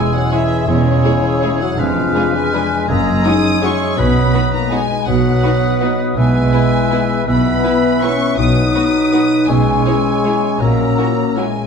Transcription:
Already playing: harp E2 C#4 G#4 E5, french horn section G#3, bassoon G#3, clarinet E4, oboe G#4, violin section G#5, flute E6
0.13 french horn section F#3, harp C#5, violin section F#5
0.31 french horn section E3, viola section G#3 E4, bassoon G#3, clarinet E4, violin section G#4 C#5 E5, oboe G#4, harp E5, flute E6
0.51 harp C#5
0.67 double bass section E1, cello section E2, harp E2, french horn section C#3, bassoon G#3, clarinet E4, oboe G#4, violin section C#5, flute E6
0.86 harp C#4
1.04 viola section G#3 E4, harp G#4, violin section G#4 C#5
1.24 harp C#5
1.42 viola section G#3 E4, violin section G#4 C#5, harp E5
1.61 french horn section F#3, harp C#5, violin section F#5
1.77 double bass section F1, cello section F2, harp F2, french horn section F3, bassoon G#3, clarinet D4, oboe B4, violin section F5, flute F6
1.96 harp B3
2.15 viola section G#3 D4, violin section G#4 B4, harp G#4
2.34 french horn section G#3, harp B4, violin section G#5
2.53 viola section G#3 D4, violin section G#4 B4, harp D5
2.71 harp B4
2.88 double bass section F#1, harp F#2, cello section F#2, bassoon G#3, french horn section A#3, clarinet C#4, oboe G#4, violin section A#5, flute E6
3.07 harp C#4
3.24 viola section G#3 E4, french horn section D#4, violin section F#4 C#5 D#6, harp G#4
3.44 harp C#5
3.62 viola section G#3 E4, bassoon G#3, clarinet C#4, french horn section C#4, violin section F#4 C#5 C#6, oboe G#4, harp E5, flute E6
3.81 harp C#5
3.97 double bass section B1, harp B2, cello section B2, bassoon F#3, french horn section B3, clarinet B3, oboe B4, violin section B5, flute D#6
4.16 harp B3
4.34 viola section B3 D#4, violin section F#4 B4, harp B4
4.53 french horn section A#3, harp D#4, violin section A#5
4.71 french horn section G#3, viola section B3 D#4, violin section F#4 B4 G#5, harp D#5
4.90 harp B4
5.07 double bass section B1, cello section B2, harp B2, french horn section F#3, bassoon F#3, clarinet B3, oboe B4, violin section F#5, flute D#6
5.26 harp B3
5.43 viola section B3 D#4, violin section F#4 B4, harp B4
5.63 harp D#4
5.81 viola section B3 D#4, violin section F#4 B4, harp D#5
6.00 harp B4
6.16 double bass section B1, cello section B2, harp B2, bassoon E3, french horn section G#3, clarinet B3, oboe B4, violin section G#5, flute E6
6.35 harp B3
6.52 viola section B3 E4, violin section E4 B4, harp B4
6.72 harp E4
6.91 viola section B3 E4, violin section E4 B4, harp E5
7.10 harp B4
7.26 double bass section B1, cello section B2, harp B2, bassoon E3, clarinet B3, french horn section B3, oboe B4, violin section B5, flute E6
7.45 harp B3
7.64 viola section B3 E4, violin section E4 B4, harp B4
7.83 harp E4
8.02 viola section B3 E4, french horn section C#4, violin section E4 B4 C#6, harp E5
8.20 harp B4
8.38 double bass section B1, harp B2, cello section B2, bassoon F#3, clarinet D#4, french horn section D#4, oboe B4, violin section D#6, flute D#6
8.56 harp B3
8.75 viola section B3 D#4, violin section F#4 B4, harp B4
9.12 viola section B3 D#4, violin section F#4 B4, harp F#5
9.32 harp B4
9.48 double bass section B1, harp B2, cello section B2, bassoon G#3, french horn section G#3, clarinet C#4, oboe C#5, violin section G#5, flute E6
9.67 harp C#4
9.86 viola section G#3 E4, harp G#4, violin section G#4 C#5
10.05 harp C#5
10.24 viola section G#3 E4, violin section G#4 C#5, harp E5
10.43 harp C#5
10.59 double bass section A#1, harp A#2, cello section A#2, bassoon F#3, french horn section A#3, clarinet C#4, oboe A#4, violin section A#5, flute E6
10.78 harp C#4
10.98 viola section C#4 E4, violin section F#4 A#4, harp F#4
11.17 harp C#5
11.37 french horn section G#3, viola section C#4 E4, violin section F#4 A#4 G#5, harp E5
11.56 harp C#5

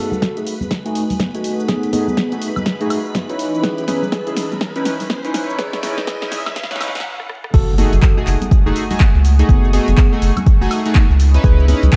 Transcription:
Already playing: analog polysynth A3 D#4 F#4 G#4, analog synth pad A3 F#4 D#5 G#5, tine electric piano F#4 A4, string machine B4 B5, riser
0.12 low conga, shaker
0.22 kick, snare, closed hi-hat, shaker
0.37 analog polysynth A3 D#4 F#4 G#4, closed hi-hat, shaker
0.47 open hi-hat, shaker
0.61 high conga, low conga, shaker
0.71 kick, snare, closed hi-hat, shaker
0.85 analog polysynth A3 D#4 F#4 G#4, closed hi-hat, shaker
0.95 open hi-hat, shaker
1.10 open hi-hat, low conga, shaker
1.19 kick, snare, closed hi-hat, high conga, shaker
1.34 analog polysynth A3 D#4 F#4 G#4, closed hi-hat, shaker
1.44 open hi-hat, shaker
1.60 shaker
1.68 tine electric piano B3 G#4, kick, snare, closed hi-hat, shaker
1.83 closed hi-hat, shaker
1.93 analog polysynth A3 D#4 F#4 G#4, tine electric piano B3 G#4, open hi-hat, high conga, shaker
2.08 low conga, shaker
2.17 kick, snare, closed hi-hat, shaker
2.32 analog polysynth A3 D#4 F#4 G#4, closed hi-hat, shaker
2.42 open hi-hat, shaker
2.56 high conga, low conga, high woodblock, shaker
2.66 kick, snare, closed hi-hat, shaker
2.81 analog polysynth A3 D#4 F#4 G#4, closed hi-hat, shaker
2.90 open hi-hat, high woodblock, shaker
3.06 shaker
3.15 kick, snare, closed hi-hat, high conga, shaker
3.29 analog polysynth C#4 D#4 E4 B4, closed hi-hat, shaker
3.39 analog synth pad E3 C#4 B4, open hi-hat, shaker
3.55 shaker
3.63 tine electric piano G#4 B4, kick, snare, closed hi-hat, shaker
3.78 closed hi-hat, shaker
3.88 analog polysynth C#4 D#4 E4 B4, tine electric piano G#4 B4, snare, open hi-hat, high conga, shaker
4.02 low conga, shaker
4.12 kick, snare, closed hi-hat, shaker
4.27 analog polysynth C#4 D#4 E4 G#4, closed hi-hat, shaker
4.37 snare, open hi-hat, shaker
4.52 high conga, low conga, shaker
4.61 kick, snare, closed hi-hat, shaker
4.76 analog polysynth C#4 D#4 E4 B4, closed hi-hat, shaker
4.85 snare, open hi-hat, shaker
5.00 open hi-hat, low conga, shaker
5.10 kick, snare, closed hi-hat, high conga, shaker
5.24 analog polysynth C#4 D#4 E4 B4, closed hi-hat, shaker
5.34 analog synth pad E6, snare, open hi-hat, shaker
5.50 shaker
5.59 tine electric piano G#4 B4, kick, snare, closed hi-hat, shaker
5.73 snare, closed hi-hat, shaker
5.83 analog polysynth C#4 D#4 E4 B4, tine electric piano G#4 B4, snare, open hi-hat, high conga, shaker
5.97 snare, closed hi-hat, low conga, shaker
6.07 kick, snare, closed hi-hat, shaker
6.22 analog polysynth C#4 D#4 E4 G#4, snare, closed hi-hat, shaker
6.32 snare, open hi-hat, shaker
6.46 snare, closed hi-hat, high conga, low conga, high woodblock, shaker
6.56 kick, snare, closed hi-hat, shaker
6.64 snare
6.71 analog polysynth C#4 D#4 E4 B4, snare, closed hi-hat, shaker
6.76 snare
6.81 snare, open hi-hat, high woodblock, shaker
6.88 snare
6.95 snare, closed hi-hat, shaker
7.00 snare
7.20 cross-stick
7.29 cross-stick
7.44 cross-stick
7.54 analog synth bass F#1, analog synth pad A3 F#5 G#5 D#6, tine electric piano F#4 A4, kick, closed hi-hat, crash, impact, shaker
7.69 shaker
7.78 analog polysynth A3 D#4 F#4 G#4, tine electric piano F#4 A4, open hi-hat, high conga, shaker
7.93 analog synth bass F#1, closed hi-hat, low conga, shaker
8.02 kick, clap, closed hi-hat, shaker
8.17 analog polysynth A3 D#4 F#4 G#4, shaker
8.27 analog synth bass F#1, clap, open hi-hat, shaker
8.41 closed hi-hat, high conga, low conga, shaker
8.51 kick, closed hi-hat, shaker
8.66 analog synth bass F#1, analog polysynth A3 D#4 F#4 G#4, shaker
8.76 open hi-hat, shaker
8.90 analog polysynth A3 D#4 F#4 G#4, open hi-hat, low conga, shaker
9.00 kick, clap, high conga, shaker
9.15 analog synth bass C#2, shaker
9.25 open hi-hat, shaker
9.39 analog polysynth A3 D#4 F#4 G#4, closed hi-hat, shaker
9.49 analog synth bass F#1, tine electric piano B3 G#4, analog synth pad C#6, kick, closed hi-hat, shaker
9.64 shaker
9.73 analog polysynth A3 D#4 F#4 G#4, tine electric piano B3 G#4, open hi-hat, high conga, shaker
9.88 analog synth bass F#1, closed hi-hat, low conga, shaker
9.98 kick, clap, closed hi-hat, shaker
10.12 analog polysynth A3 D#4 F#4 G#4, shaker
10.22 analog synth bass F#1, open hi-hat, shaker
10.36 closed hi-hat, high conga, low conga, high woodblock, shaker
10.46 kick, closed hi-hat, shaker
10.61 analog synth bass F#1, analog polysynth A3 D#4 F#4 G#4, shaker
10.71 open hi-hat, high woodblock, shaker
10.86 analog polysynth A3 D#4 F#4 G#4, closed hi-hat, shaker
10.95 kick, clap, closed hi-hat, high conga, shaker
11.10 analog synth bass C#2, shaker
11.20 analog synth pad C#5 D#5 B5 D#6, open hi-hat, shaker
11.34 analog polysynth C#4 D#4 E4 B4, closed hi-hat, shaker
11.44 analog synth bass C#2, tine electric piano G#4 B4, kick, closed hi-hat, shaker
11.59 shaker
11.68 analog polysynth C#4 D#4 E4 B4, tine electric piano G#4 B4, open hi-hat, high conga, shaker
11.83 analog synth bass C#2, closed hi-hat, low conga, shaker
11.93 kick, clap, closed hi-hat

